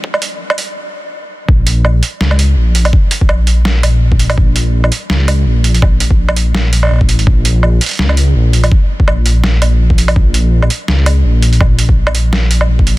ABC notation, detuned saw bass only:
X:1
M:4/4
L:1/8
Q:"Swing 16ths" 1/4=166
K:Bbm
V:1 name="Detuned saw bass" clef=bass
z8 | B,,,3 z D,,2 B,,,2 | z2 B,,,3 B,,,3 | B,,,3 z D,,2 B,,,2 |
B,,,6 B,,,2 | B,,,3 z D,,2 B,,,2 | z2 B,,,3 B,,,3 | B,,,3 z D,,2 B,,,2 |
B,,,6 B,,,2 |]